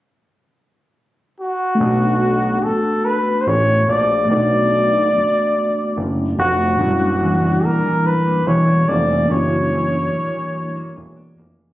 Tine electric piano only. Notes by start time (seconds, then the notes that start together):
1.75 A3 B3
1.82 D4 F#4
4.25 A3 B3
4.33 D4 F#4
6.75 A#2 D4
6.83 G3 E4
9.25 A#3 D4
9.32 E4 F#4